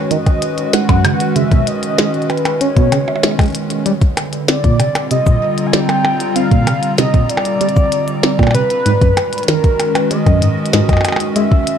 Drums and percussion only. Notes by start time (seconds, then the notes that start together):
0.11 closed hi-hat
0.26 kick, closed hi-hat, percussion blips
0.42 closed hi-hat
0.58 closed hi-hat
0.73 snare, closed hi-hat
0.89 kick, closed hi-hat, percussion blips
1.05 closed hi-hat, percussion blips
1.20 closed hi-hat
1.36 closed hi-hat
1.52 kick, closed hi-hat
1.67 closed hi-hat
1.83 closed hi-hat
1.98 snare
2.14 closed hi-hat
2.22 closed hi-hat
2.30 closed hi-hat, percussion blips
2.38 closed hi-hat
2.45 closed hi-hat, percussion blips
2.61 closed hi-hat
2.77 kick, closed hi-hat
2.92 closed hi-hat, percussion blips
3.08 percussion blips
3.16 percussion blips
3.23 snare, closed hi-hat, percussion blips
3.31 percussion blips
3.39 kick, closed hi-hat, percussion blips
3.41 closed hi-hat
3.43 closed hi-hat
3.46 closed hi-hat
3.48 closed hi-hat
3.50 closed hi-hat
3.52 closed hi-hat
3.55 closed hi-hat
3.70 closed hi-hat
3.86 closed hi-hat
4.02 kick, closed hi-hat
4.17 closed hi-hat, percussion blips
4.33 closed hi-hat
4.48 snare, closed hi-hat
4.64 kick, closed hi-hat
4.80 closed hi-hat, percussion blips
4.95 closed hi-hat, percussion blips
5.11 closed hi-hat
5.26 kick, shaker
5.58 closed hi-hat
5.73 snare, closed hi-hat
5.89 closed hi-hat, percussion blips
6.05 percussion blips
6.20 closed hi-hat
6.36 closed hi-hat
6.51 kick, closed hi-hat
6.67 closed hi-hat, percussion blips
6.83 closed hi-hat
6.98 snare, closed hi-hat, shaker
7.14 kick, closed hi-hat
7.30 closed hi-hat
7.37 percussion blips
7.45 closed hi-hat
7.61 closed hi-hat
7.69 closed hi-hat
7.76 kick, shaker
7.92 closed hi-hat
8.08 closed hi-hat
8.23 snare
8.39 kick, percussion blips
8.43 percussion blips
8.47 percussion blips
8.51 closed hi-hat, percussion blips
8.70 closed hi-hat
8.86 closed hi-hat
9.01 kick, closed hi-hat
9.17 closed hi-hat, percussion blips
9.33 closed hi-hat
9.38 closed hi-hat
9.43 closed hi-hat
9.48 snare, closed hi-hat
9.64 kick, closed hi-hat
9.80 closed hi-hat, percussion blips
9.95 closed hi-hat, percussion blips
10.11 closed hi-hat
10.26 kick, closed hi-hat, percussion blips
10.42 closed hi-hat
10.66 closed hi-hat
10.73 snare, closed hi-hat
10.89 kick, closed hi-hat, percussion blips
10.93 percussion blips
10.97 percussion blips
11.01 closed hi-hat, percussion blips
11.05 percussion blips
11.08 percussion blips
11.12 percussion blips
11.16 closed hi-hat, percussion blips
11.36 closed hi-hat
11.52 kick
11.67 closed hi-hat